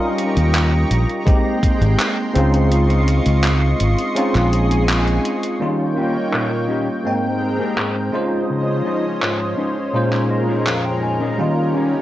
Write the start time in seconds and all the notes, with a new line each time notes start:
Already playing: G3 C#4 D#4 F4 G4 A#4 D#5 A#5 C#6
0.18 closed hi-hat
0.37 D#2, closed hi-hat
0.55 clap, closed hi-hat
0.91 A#1, closed hi-hat
1.10 closed hi-hat
1.25 G#3 A#3 C4 D#4 G4 G5 C6, kick, closed hi-hat
1.63 kick, closed hi-hat
1.81 G#1, closed hi-hat
1.99 clap, closed hi-hat
2.34 C#2 G#3 C4 C#4 D#4 F4 D#5 C#6, closed hi-hat
2.54 closed hi-hat
2.72 closed hi-hat
2.90 closed hi-hat
3.08 closed hi-hat
3.26 C#2, closed hi-hat
3.44 clap, closed hi-hat
3.80 G#1, closed hi-hat
3.98 closed hi-hat
4.15 G#3 C4 C#4 D#4 F4 G#4, closed hi-hat
4.35 A#1, clap, closed hi-hat
4.53 closed hi-hat
4.71 closed hi-hat
4.89 clap, closed hi-hat
5.08 closed hi-hat
5.25 closed hi-hat
5.43 closed hi-hat
5.59 D#3 G3 A#3 C#4 D#4 F4 C#5 G5
5.96 C#4 D#4 G4
6.33 A#2, clap
6.68 C#4 D#4 G4
7.04 G#2 G#3 A#3 C4 D#4 A#4 G5
7.40 muted clean electric guitar stroke
7.59 C4 G4 G#4 A#4
7.78 G#2, clap
8.12 F3 G#3 C#4 D#4 F4 C5 D#5
8.50 C#3
8.85 C#4 D#4 F4 D#5
9.22 G#2, clap
9.57 C#4 D#4 F4 C5
9.93 A#2 G#3 C#4 D#4 F4 A#4 C5
10.13 clap
10.29 D#5, muted clean electric guitar stroke
10.47 C#4 D#4 G#4 A#4 C5
10.66 F2 F5, clap
10.85 G5
11.02 G#5, muted clean electric guitar stroke
11.20 C#4 D#4 G#4 A#4 D#5
11.37 D#3 G3 A#3 C#4 D#4 F4
11.74 C#4 D#4 G4